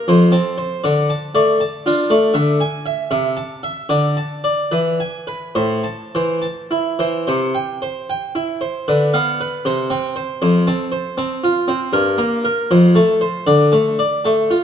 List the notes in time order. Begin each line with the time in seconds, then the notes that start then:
0.08 F2 C5
0.32 C4 A5
0.58 C5
0.84 D3 D5
1.10 A5
1.35 A3 D5
1.60 A5
1.86 D4 F4
2.10 A3 D5
2.34 D3 E5
2.60 G#5
2.86 E5
3.11 C3 E5
3.37 A5
3.63 E5
3.89 D3 D5
4.17 A5
4.44 D5
4.71 E3 B4
5.00 G#5
5.27 B4
5.55 A2 C5
5.84 A5
6.15 E3 C5
6.42 A5
6.71 E4
6.99 E3 C5
7.27 C3 C5
7.55 G5
7.82 C5
8.10 G5
8.35 E4
8.61 C5
8.88 D3 B4
9.14 B3 F5
9.41 B4
9.65 C3 C5
9.90 C4 G5
10.16 C5
10.42 F2 C5
10.67 C4 A5
10.92 C5
11.18 C4 A5
11.44 F4
11.68 C4 C5
11.93 G2 A#4
12.18 A#3 A#5
12.44 A#4
12.71 F2 C5
12.95 A3 A5
13.21 C5
13.47 D3 D5
13.72 A3 A5
13.99 D5
14.25 A3 A5
14.51 F4